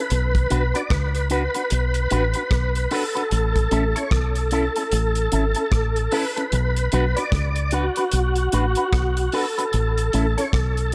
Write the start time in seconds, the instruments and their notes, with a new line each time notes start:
Already playing: tonewheel organ B4
0.10 fingered electric bass B1, closed hi-hat
0.35 kick, closed hi-hat
0.50 fingered electric bass B1, clean electric guitar D4 F#4 B4, closed hi-hat
0.74 clean electric guitar D4 F#4 B4, tonewheel organ D5, closed hi-hat
0.90 fingered electric bass C#2, tonewheel organ B4, kick, cross-stick, closed hi-hat
1.15 closed hi-hat
1.30 clean electric guitar D4 F#4 B4, tonewheel organ B4, closed hi-hat
1.54 clean electric guitar D4 F#4 B4, closed hi-hat
1.70 fingered electric bass B1, closed hi-hat
1.94 closed hi-hat
2.10 fingered electric bass A1, clean electric guitar D4 F#4 B4, closed hi-hat
2.34 clean electric guitar D4 F#4 B4, closed hi-hat
2.51 fingered electric bass B1, kick, cross-stick, closed hi-hat
2.75 closed hi-hat
2.91 clean electric guitar D4 F#4 B4, tonewheel organ A4, open hi-hat
3.15 clean electric guitar D4 F#4 B4, closed hi-hat
3.31 fingered electric bass A1, closed hi-hat
3.56 kick, closed hi-hat
3.71 fingered electric bass A1, clean electric guitar C#4 E4 A4, closed hi-hat
3.96 clean electric guitar C#4 E4 A4, tonewheel organ C#5, closed hi-hat
4.11 fingered electric bass B1, tonewheel organ A4, kick, cross-stick, closed hi-hat
4.35 closed hi-hat
4.51 clean electric guitar C#4 E4 A4, tonewheel organ A4, closed hi-hat
4.76 clean electric guitar C#4 E4 A4, closed hi-hat
4.92 fingered electric bass A1, closed hi-hat
5.15 closed hi-hat
5.32 fingered electric bass G#1, clean electric guitar C#4 E4 A4, closed hi-hat
5.55 clean electric guitar C#4 E4 A4, closed hi-hat
5.72 fingered electric bass A1, kick, cross-stick, closed hi-hat
5.96 closed hi-hat
6.12 clean electric guitar C#4 E4 A4, tonewheel organ B4, open hi-hat
6.36 clean electric guitar C#4 E4 A4, closed hi-hat
6.52 fingered electric bass B1, closed hi-hat
6.76 closed hi-hat
6.92 fingered electric bass B1, clean electric guitar D4 F#4 B4, closed hi-hat
7.16 clean electric guitar D4 F#4 B4, tonewheel organ D5, closed hi-hat
7.32 fingered electric bass C#2, kick, cross-stick, closed hi-hat
7.56 closed hi-hat
7.71 clean electric guitar D4 F#4 B4, tonewheel organ F#4, closed hi-hat
7.96 clean electric guitar D4 F#4 B4, closed hi-hat
8.12 fingered electric bass B1, closed hi-hat
8.36 closed hi-hat
8.52 fingered electric bass A1, clean electric guitar D4 F#4 B4, closed hi-hat
8.75 clean electric guitar D4 F#4 B4, closed hi-hat
8.93 fingered electric bass B1, kick, cross-stick, closed hi-hat
9.17 closed hi-hat
9.32 clean electric guitar D4 F#4 B4, tonewheel organ A4, open hi-hat
9.58 clean electric guitar D4 F#4 B4, closed hi-hat
9.73 fingered electric bass A1, closed hi-hat
9.98 closed hi-hat
10.13 fingered electric bass A1, clean electric guitar C#4 E4 A4, closed hi-hat
10.37 clean electric guitar C#4 E4 A4, tonewheel organ C#5, closed hi-hat
10.53 fingered electric bass B1, tonewheel organ A4, kick, cross-stick, closed hi-hat
10.77 closed hi-hat